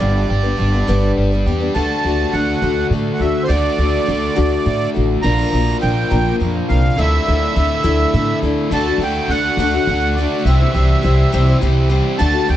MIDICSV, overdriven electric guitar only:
0, 0, Header, 1, 2, 480
1, 0, Start_track
1, 0, Tempo, 580833
1, 2, Time_signature, 6, 3, 24, 8
1, 10387, End_track
2, 0, Start_track
2, 0, Title_t, "Overdriven electric guitar"
2, 0, Program_c, 0, 29
2, 0, Note_on_c, 0, 43, 62
2, 0, Note_on_c, 0, 62, 63
2, 248, Note_on_c, 0, 67, 57
2, 479, Note_off_c, 0, 62, 0
2, 482, Note_on_c, 0, 62, 60
2, 725, Note_on_c, 0, 55, 64
2, 960, Note_off_c, 0, 62, 0
2, 970, Note_on_c, 0, 62, 60
2, 1202, Note_off_c, 0, 43, 0
2, 1203, Note_off_c, 0, 67, 0
2, 1213, Note_on_c, 0, 67, 66
2, 1437, Note_off_c, 0, 55, 0
2, 1440, Note_on_c, 0, 50, 72
2, 1450, Note_off_c, 0, 62, 0
2, 1451, Note_off_c, 0, 67, 0
2, 1454, Note_on_c, 0, 57, 72
2, 1460, Note_on_c, 0, 62, 79
2, 1473, Note_on_c, 0, 66, 83
2, 2868, Note_off_c, 0, 50, 0
2, 2875, Note_off_c, 0, 57, 0
2, 2878, Note_on_c, 0, 50, 78
2, 2885, Note_on_c, 0, 57, 88
2, 2889, Note_off_c, 0, 66, 0
2, 2892, Note_off_c, 0, 62, 0
2, 2895, Note_on_c, 0, 62, 83
2, 2904, Note_on_c, 0, 66, 90
2, 4310, Note_off_c, 0, 50, 0
2, 4314, Note_off_c, 0, 57, 0
2, 4320, Note_on_c, 0, 46, 82
2, 4324, Note_off_c, 0, 66, 0
2, 4328, Note_on_c, 0, 53, 82
2, 4333, Note_on_c, 0, 58, 85
2, 4334, Note_off_c, 0, 62, 0
2, 4338, Note_on_c, 0, 62, 91
2, 4345, Note_on_c, 0, 65, 86
2, 5749, Note_off_c, 0, 46, 0
2, 5753, Note_off_c, 0, 53, 0
2, 5756, Note_off_c, 0, 58, 0
2, 5759, Note_on_c, 0, 50, 81
2, 5762, Note_off_c, 0, 65, 0
2, 5769, Note_on_c, 0, 57, 86
2, 5776, Note_off_c, 0, 62, 0
2, 5780, Note_on_c, 0, 62, 86
2, 5786, Note_on_c, 0, 64, 97
2, 7180, Note_off_c, 0, 50, 0
2, 7190, Note_on_c, 0, 50, 83
2, 7192, Note_off_c, 0, 57, 0
2, 7197, Note_off_c, 0, 62, 0
2, 7200, Note_off_c, 0, 64, 0
2, 7204, Note_on_c, 0, 57, 83
2, 7211, Note_on_c, 0, 62, 93
2, 7217, Note_on_c, 0, 66, 104
2, 7436, Note_off_c, 0, 66, 0
2, 7446, Note_on_c, 0, 66, 66
2, 7450, Note_off_c, 0, 62, 0
2, 7460, Note_on_c, 0, 62, 54
2, 7461, Note_off_c, 0, 57, 0
2, 7471, Note_on_c, 0, 57, 62
2, 7672, Note_off_c, 0, 50, 0
2, 7680, Note_off_c, 0, 57, 0
2, 7682, Note_on_c, 0, 50, 62
2, 7690, Note_on_c, 0, 57, 69
2, 7693, Note_off_c, 0, 62, 0
2, 7697, Note_off_c, 0, 66, 0
2, 7703, Note_on_c, 0, 62, 65
2, 7707, Note_on_c, 0, 66, 79
2, 7920, Note_off_c, 0, 66, 0
2, 7929, Note_off_c, 0, 62, 0
2, 7930, Note_on_c, 0, 66, 68
2, 7939, Note_on_c, 0, 62, 66
2, 7940, Note_off_c, 0, 57, 0
2, 7950, Note_on_c, 0, 57, 60
2, 8153, Note_off_c, 0, 50, 0
2, 8163, Note_on_c, 0, 50, 71
2, 8168, Note_off_c, 0, 57, 0
2, 8171, Note_off_c, 0, 62, 0
2, 8178, Note_on_c, 0, 57, 75
2, 8181, Note_off_c, 0, 66, 0
2, 8181, Note_on_c, 0, 62, 77
2, 8191, Note_on_c, 0, 66, 81
2, 8394, Note_off_c, 0, 66, 0
2, 8404, Note_on_c, 0, 66, 81
2, 8407, Note_off_c, 0, 62, 0
2, 8417, Note_on_c, 0, 62, 69
2, 8424, Note_off_c, 0, 57, 0
2, 8434, Note_on_c, 0, 57, 62
2, 8627, Note_off_c, 0, 50, 0
2, 8628, Note_off_c, 0, 66, 0
2, 8635, Note_off_c, 0, 62, 0
2, 8638, Note_on_c, 0, 48, 80
2, 8643, Note_off_c, 0, 57, 0
2, 8644, Note_on_c, 0, 52, 99
2, 8646, Note_on_c, 0, 55, 86
2, 8658, Note_on_c, 0, 60, 90
2, 8666, Note_on_c, 0, 67, 97
2, 8860, Note_off_c, 0, 67, 0
2, 8870, Note_on_c, 0, 67, 70
2, 8877, Note_off_c, 0, 60, 0
2, 8887, Note_on_c, 0, 60, 56
2, 8889, Note_off_c, 0, 55, 0
2, 8898, Note_on_c, 0, 55, 57
2, 9096, Note_off_c, 0, 52, 0
2, 9105, Note_off_c, 0, 55, 0
2, 9106, Note_on_c, 0, 52, 76
2, 9115, Note_on_c, 0, 55, 76
2, 9117, Note_off_c, 0, 60, 0
2, 9119, Note_off_c, 0, 48, 0
2, 9122, Note_off_c, 0, 67, 0
2, 9127, Note_on_c, 0, 60, 72
2, 9132, Note_on_c, 0, 67, 73
2, 9328, Note_off_c, 0, 67, 0
2, 9338, Note_on_c, 0, 67, 78
2, 9347, Note_off_c, 0, 60, 0
2, 9355, Note_off_c, 0, 55, 0
2, 9357, Note_on_c, 0, 60, 57
2, 9365, Note_on_c, 0, 55, 66
2, 9576, Note_off_c, 0, 52, 0
2, 9583, Note_off_c, 0, 55, 0
2, 9586, Note_on_c, 0, 52, 82
2, 9593, Note_on_c, 0, 55, 79
2, 9595, Note_off_c, 0, 60, 0
2, 9600, Note_off_c, 0, 67, 0
2, 9605, Note_on_c, 0, 60, 85
2, 9610, Note_on_c, 0, 67, 87
2, 9819, Note_off_c, 0, 67, 0
2, 9829, Note_off_c, 0, 60, 0
2, 9829, Note_on_c, 0, 67, 83
2, 9839, Note_on_c, 0, 60, 69
2, 9844, Note_off_c, 0, 55, 0
2, 9854, Note_on_c, 0, 55, 64
2, 10058, Note_off_c, 0, 52, 0
2, 10059, Note_off_c, 0, 67, 0
2, 10064, Note_off_c, 0, 60, 0
2, 10065, Note_on_c, 0, 50, 92
2, 10072, Note_off_c, 0, 55, 0
2, 10078, Note_on_c, 0, 57, 88
2, 10083, Note_on_c, 0, 62, 87
2, 10087, Note_on_c, 0, 66, 90
2, 10302, Note_off_c, 0, 66, 0
2, 10312, Note_on_c, 0, 66, 66
2, 10317, Note_off_c, 0, 62, 0
2, 10327, Note_on_c, 0, 62, 62
2, 10333, Note_off_c, 0, 57, 0
2, 10336, Note_on_c, 0, 57, 58
2, 10387, Note_off_c, 0, 50, 0
2, 10387, Note_off_c, 0, 57, 0
2, 10387, Note_off_c, 0, 62, 0
2, 10387, Note_off_c, 0, 66, 0
2, 10387, End_track
0, 0, End_of_file